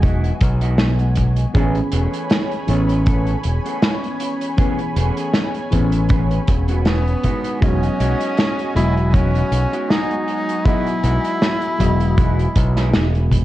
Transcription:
Already playing: fingered electric bass E1, fm electric piano F#3 G#3 B3 D#5, analog synth pad F#4 G#5
0.02 clean electric guitar G#3 D#4 E4 F#4, kick, closed hi-hat
0.24 closed hi-hat
0.41 fingered electric bass B1, kick, closed hi-hat
0.61 clean electric guitar G#3 D#4 E4 F#4, closed hi-hat
0.78 snare, closed hi-hat
0.99 closed hi-hat
1.16 muted clean electric guitar stroke, kick, closed hi-hat
1.36 closed hi-hat
1.53 fingered electric bass A1, fm electric piano E3 B3 C#4 G#4, clean electric guitar A3 B3 C#4 G#4, analog synth pad C#5 G#5 B5, kick, closed hi-hat
1.75 closed hi-hat
1.92 fingered electric bass E1, clean electric guitar A3 B3 C#4 G#4, closed hi-hat
2.13 closed hi-hat
2.30 snare, closed hi-hat
2.51 closed hi-hat
2.67 fingered electric bass A1, fm electric piano E3 B3 C#4, closed hi-hat
2.89 closed hi-hat
3.06 clean electric guitar A3 B3 C#4 A4, kick, closed hi-hat
3.26 closed hi-hat
3.43 fingered electric bass E1, closed hi-hat
3.65 clean electric guitar A3 B3 C#4 G#4, closed hi-hat
3.82 snare, closed hi-hat
4.04 closed hi-hat
4.20 muted clean electric guitar stroke, closed hi-hat
4.41 closed hi-hat
4.57 fm electric piano E3 B3 C#4 G#4, clean electric guitar A3 B3 C#4 G#4, kick, closed hi-hat
4.78 closed hi-hat
4.96 fingered electric bass E1, clean electric guitar A3 B3 C#4 G#4, closed hi-hat
5.17 closed hi-hat
5.34 snare, closed hi-hat
5.54 closed hi-hat
5.70 fingered electric bass A1, fm electric piano E3 B3 C#4 G#4, kick, closed hi-hat
5.92 closed hi-hat
6.09 clean electric guitar A3 B3 C#4 G#4, kick, closed hi-hat
6.31 closed hi-hat
6.47 fingered electric bass E1, kick, closed hi-hat
6.68 clean electric guitar A3 B3 C#4 F#4, closed hi-hat
6.85 tenor saxophone B3, snare, closed hi-hat
7.07 closed hi-hat
7.23 clean electric guitar G#3 D#4 E4 F#4, analog synth pad F#4 D#5 G#5, kick, closed hi-hat
7.44 closed hi-hat
7.60 fingered electric bass E1, fm electric piano F#3 G#3 B3 D#5, tenor saxophone C#4, kick, closed hi-hat
7.83 closed hi-hat
7.99 fingered electric bass B1, clean electric guitar G#3 D#4 E4 F#4, closed hi-hat
8.20 closed hi-hat
8.37 snare, closed hi-hat
8.59 closed hi-hat
8.75 fingered electric bass E1, fm electric piano F#3 G#3 B3 D#5, tenor saxophone E4, closed hi-hat
8.97 closed hi-hat
9.13 clean electric guitar G#3 D#4 E4 F#4, tenor saxophone C#4, kick, closed hi-hat
9.35 closed hi-hat
9.52 fingered electric bass B1, closed hi-hat
9.72 clean electric guitar G#3 D#4 E4 F#4, closed hi-hat
9.90 tenor saxophone D#4, snare, closed hi-hat
10.11 closed hi-hat
10.28 muted clean electric guitar stroke, closed hi-hat
10.49 closed hi-hat
10.65 fm electric piano F#3 G#3 B3 D#5, clean electric guitar G#3 D#4 E4 F#4, tenor saxophone E4, kick, closed hi-hat
10.87 closed hi-hat
11.03 fingered electric bass B1, clean electric guitar G#3 D#4 E4 F#4, closed hi-hat
11.24 closed hi-hat
11.42 snare, closed hi-hat
11.62 closed hi-hat
11.78 fingered electric bass E1, fm electric piano F#3 G#3 B3 D#5, kick, closed hi-hat
12.00 closed hi-hat
12.17 clean electric guitar G#3 D#4 E4 F#4, kick, closed hi-hat
12.39 closed hi-hat
12.56 fingered electric bass B1, kick, closed hi-hat
12.76 clean electric guitar G#3 D#4 E4 G#4, snare, closed hi-hat
12.94 fingered electric bass E1, snare, closed hi-hat
13.15 closed hi-hat
13.31 muted clean electric guitar stroke, kick, closed hi-hat

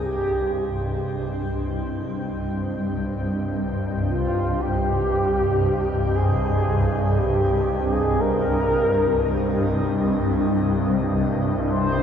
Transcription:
Already playing: synth drone C2 G2, analog synth pad C4 C5 D#5 G5
0.05 soft synth lead G4
4.10 soft synth lead F4
4.61 soft synth lead G4
6.15 soft synth lead G#4
7.18 soft synth lead G4
7.92 soft synth lead G#4
8.20 soft synth lead A#4
11.70 soft synth lead C5

